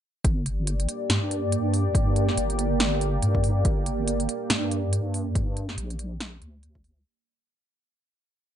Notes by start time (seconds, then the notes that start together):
0.24 G1 A#3 G4 D5, kick, closed hi-hat
0.46 closed hi-hat
0.67 closed hi-hat
0.80 closed hi-hat
0.89 closed hi-hat
1.10 G2, snare, closed hi-hat
1.31 closed hi-hat
1.52 closed hi-hat
1.74 open hi-hat
1.95 kick, closed hi-hat
2.16 closed hi-hat
2.29 snare
2.37 G1, closed hi-hat
2.50 closed hi-hat
2.59 closed hi-hat
2.80 snare, closed hi-hat
3.01 closed hi-hat
3.22 G2, closed hi-hat
3.35 kick
3.44 open hi-hat
3.65 G1, kick, closed hi-hat
3.86 closed hi-hat
4.08 closed hi-hat
4.20 closed hi-hat
4.29 closed hi-hat
4.50 G2, snare, closed hi-hat
4.71 closed hi-hat
4.93 closed hi-hat
5.14 open hi-hat
5.35 kick, closed hi-hat
5.57 closed hi-hat
5.69 snare
5.78 A#1, closed hi-hat
5.90 closed hi-hat
5.99 closed hi-hat
6.20 snare, closed hi-hat
6.42 D2, closed hi-hat
6.63 closed hi-hat
6.75 kick
6.84 open hi-hat